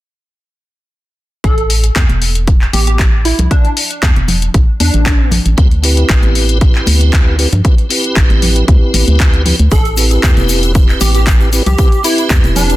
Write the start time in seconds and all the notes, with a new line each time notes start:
1.44 A1 A4, kick, closed hi-hat
1.58 closed hi-hat
1.70 open hi-hat
1.84 closed hi-hat
1.96 E2, kick, clap, closed hi-hat
2.09 E1, closed hi-hat, high conga
2.22 open hi-hat
2.35 closed hi-hat
2.47 kick, closed hi-hat
2.62 clap
2.73 A1 G4, open hi-hat, high conga
2.87 G4, closed hi-hat
2.99 kick, clap, closed hi-hat
3.25 E4, open hi-hat
3.39 C2, closed hi-hat, low conga
3.51 D4, kick, closed hi-hat
3.65 closed hi-hat
3.77 open hi-hat
3.91 closed hi-hat
4.03 E2, kick, clap, closed hi-hat
4.16 E1, closed hi-hat, high conga
4.28 open hi-hat, low conga
4.42 closed hi-hat
4.54 A1, kick, closed hi-hat
4.80 E2 D4, open hi-hat, high conga
4.94 A1, closed hi-hat
5.06 kick, clap, closed hi-hat
5.31 open hi-hat, low conga
5.46 A1, closed hi-hat
5.57 D2 C4 E4 G4 B4, kick, closed hi-hat
5.71 closed hi-hat
5.83 C4 E4 G4 B4, open hi-hat
5.97 closed hi-hat
6.10 A1, kick, clap, closed hi-hat
6.23 A1, closed hi-hat, high conga
6.35 open hi-hat
6.49 closed hi-hat
6.60 C4 E4 G4 B4, kick, closed hi-hat
6.75 clap
6.87 D2, open hi-hat, high conga
7.01 closed hi-hat
7.13 kick, clap, closed hi-hat
7.38 C4 E4 G4 B4, open hi-hat
7.53 G2, closed hi-hat, low conga
7.64 C4 E4 G4 B4, kick, closed hi-hat
7.78 closed hi-hat
7.89 C4 E4 G4 B4, open hi-hat
8.04 closed hi-hat
8.16 A1, kick, clap, closed hi-hat
8.30 A1, closed hi-hat, high conga
8.42 open hi-hat, low conga
8.56 closed hi-hat
8.67 D2 C4 E4 G4 B4, kick, closed hi-hat
8.94 A1, open hi-hat, high conga
9.08 D2, closed hi-hat
9.20 kick, clap, closed hi-hat
9.34 closed hi-hat
9.45 C4 E4 G4 B4, open hi-hat, low conga
9.59 D2, closed hi-hat
9.71 A1 C4 E4 G4 A4 B4, kick, closed hi-hat, shaker
9.85 closed hi-hat, shaker
9.96 C4 E4 G4 B4, open hi-hat, shaker
10.11 closed hi-hat, shaker
10.23 E2, kick, clap, closed hi-hat, shaker
10.37 E1, closed hi-hat, high conga, shaker
10.49 open hi-hat, shaker
10.63 closed hi-hat, shaker
10.74 C4 E4 G4 B4, kick, closed hi-hat, shaker
10.89 clap, shaker
11.01 A1 G4, open hi-hat, high conga, shaker
11.14 G4, closed hi-hat, shaker
11.27 kick, clap, closed hi-hat, shaker
11.40 shaker
11.52 C4 E4 G4 B4, open hi-hat, shaker
11.66 C2 G4, closed hi-hat, low conga, shaker
11.78 C4 E4 G4 B4, kick, closed hi-hat, shaker
11.92 closed hi-hat, shaker
12.03 C4 E4 G4 B4, open hi-hat, shaker
12.18 closed hi-hat, shaker
12.30 E2, kick, clap, closed hi-hat, shaker
12.44 E1, closed hi-hat, high conga, shaker
12.56 D4, open hi-hat, low conga, shaker
12.70 closed hi-hat, shaker